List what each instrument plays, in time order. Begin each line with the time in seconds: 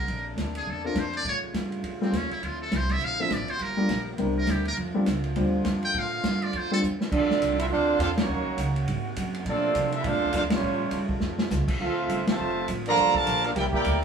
Already playing: trombone section A#3, muted trumpet A#4
0.07 upright bass A#1, trombone section C3 A3 D4, ride
0.36 upright bass D2, snare, hi-hat pedal, ride
0.55 muted trumpet G#4, ride
0.66 upright bass E2
0.70 muted trumpet A4
0.84 grand piano A#3 C4 D4 F4 A4, muted trumpet A#4
0.94 upright bass F2, snare, hi-hat pedal, ride
0.99 muted trumpet C5
1.13 muted trumpet D5, ride
1.24 upright bass A2, trombone section C#3 G3 F4, ride
1.29 muted trumpet C#5
1.42 muted upright bass stroke
1.54 upright bass G2, snare, hi-hat pedal, ride
1.72 ride
1.83 upright bass F2, ride
2.01 grand piano G3 C4 C#4 F4 A4, muted trumpet C4, snare
2.12 upright bass D#2, snare, hi-hat pedal, ride
2.16 muted trumpet C#4
2.30 muted trumpet E4, muted upright bass stroke, ride
2.42 upright bass D2, trombone section D3 F3 C4 E4, muted trumpet F4, ride
2.62 muted trumpet A4
2.71 upright bass C2, snare, hi-hat pedal, ride
2.76 muted trumpet C5
2.89 muted trumpet E5, snare, ride
3.01 upright bass A#1, muted trumpet F5, ride
3.19 grand piano F3 C4 D4 E4 A4, muted trumpet E5
3.30 upright bass A1, muted trumpet D5, snare, hi-hat pedal, ride
3.48 muted trumpet C5, muted upright bass stroke, ride
3.57 upright bass G1, trombone section G3 A#3 G4, ride
3.63 muted trumpet A#4
3.77 grand piano G3 A#3 D4 F4 A4
3.89 upright bass A#1, snare, hi-hat pedal, ride
4.17 upright bass C2, trombone section D3 C4 E4, grand piano G3 C4 D4 E4 A#4, ride
4.38 muted trumpet A#4
4.47 upright bass D2, muted trumpet G4, snare, hi-hat pedal, ride
4.65 muted trumpet A#4, ride
4.76 upright bass F2, trombone section A3 F4, ride
4.94 grand piano G3 C4 D4 F4 A4, muted upright bass stroke
5.06 upright bass C#2, snare, hi-hat pedal, ride
5.24 ride
5.36 upright bass D2, grand piano G3 C4 D4 F4 C5, ride
5.64 upright bass F2, snare, hi-hat pedal, ride
5.83 muted trumpet G5, ride
5.94 upright bass A2, ride
5.99 muted trumpet F5
6.24 upright bass G2, snare, hi-hat pedal, ride
6.42 muted trumpet D5, ride
6.53 upright bass F2, ride
6.57 muted trumpet C5
6.71 grand piano G3 C4 D4 F4 A4, muted trumpet A4
6.82 upright bass E2, hi-hat pedal
7.01 snare
7.12 upright bass F2, trombone section D3 A3 C4 D4 F4, trumpet section C4 F4 A4 D5, kick, crash
7.29 muted upright bass stroke, snare
7.40 upright bass C2, hi-hat pedal, ride
7.59 trumpet section C4 F4 A4 E5, trombone section E4, ride
7.70 upright bass D2, trombone section C4 D4 F4, trumpet section D4 A4 C5 F5
7.99 upright bass E2, trombone section C4 D4 F4, trumpet section D4 A4 C5 F5, hi-hat pedal, ride
8.17 trombone section F#3 A#3 C#4, trumpet section A#3 D#4 F#4 C#5, snare, ride
8.28 upright bass D#2, trombone section D#3 A#3 C#4 F#4
8.46 muted upright bass stroke
8.57 upright bass C#2, hi-hat pedal, ride
8.76 ride
8.87 upright bass G#2, trombone section C3 G#3 A#3, ride
9.16 upright bass F#2, hi-hat pedal, ride
9.34 ride
9.45 upright bass A#2, trombone section A#2 F3 A3 D4, trumpet section C4 F4 A4 D5, ride
9.75 upright bass C3, hi-hat pedal, ride
9.92 trumpet section C4 F4 A4 E5, trombone section E4, ride
10.04 upright bass A2, trombone section A3 D4 F4, trumpet section D4 A4 C5 F5, ride
10.14 upright bass F2
10.24 upright bass D2
10.33 upright bass F2, trombone section A3 D4 F4, trumpet section D4 A4 C5 F5, hi-hat pedal, ride
10.43 upright bass D2
10.50 upright bass A#1, trombone section F3 G3 C#4, trumpet section G3 F4 C5 C#5, snare, ride
10.62 upright bass A2, trombone section C#3 G3 F4
10.91 upright bass G2, hi-hat pedal, ride
11.09 kick
11.20 upright bass F2, snare
11.38 snare
11.50 upright bass C#2, snare, hi-hat pedal
11.68 kick, crash
11.80 upright bass D2, trombone section D3 F3 A3 C4 F4, trumpet section C4 A4 E5 F5
12.09 upright bass G1, hi-hat pedal, ride
12.27 trombone section C3 F3 A3, trumpet section F4 C5 E5 A5, muted upright bass stroke, snare, ride
12.38 upright bass F1
12.68 upright bass A1, hi-hat pedal, ride
12.86 trombone section D3 F3 A#3, trumpet section F4 A4 D5 A#5, ride
12.97 upright bass G1, trombone section A3 A#3 G4, ride
13.14 trombone section D3 F3 A3, trumpet section F4 A#4 D5 A5, muted upright bass stroke, kick
13.26 upright bass A#1, hi-hat pedal, ride
13.44 trombone section A#3 D4 F4, trumpet section D4 A4 A#4 F5, ride
13.55 upright bass C2, trombone section D3 A#3 C4 E4 G4, trumpet section E4 A#4 D5 G5, snare, ride
13.72 trombone section A#3 E4 G4, trumpet section E4 A#4 D5 G5, muted upright bass stroke, kick
13.85 upright bass D2, hi-hat pedal, ride